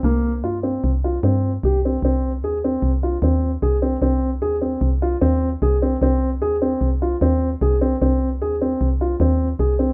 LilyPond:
<<
  \new Staff \with { instrumentName = "Grand piano" } { \time 5/4 \key aes \lydian \tempo 4 = 151 bes4 f'8 c'4 f'8 c'4 g'8 c'8 | c'4 aes'8 c'4 f'8 c'4 aes'8 c'8 | c'4 aes'8 c'4 f'8 c'4 aes'8 c'8 | c'4 aes'8 c'4 f'8 c'4 aes'8 c'8 |
c'4 aes'8 c'4 f'8 c'4 aes'8 c'8 | }
  \new Staff \with { instrumentName = "FM bass" } { \clef bass \time 5/4 \key aes \lydian c,4 g,4 c,4 g,4 c,4 | c,4 ees,4 c,4 ees,4 c,4 | c,4 ees,4 c,4 ees,4 c,4 | c,4 ees,4 c,4 ees,4 c,4 |
c,4 ees,4 c,4 ees,4 c,4 | }
>>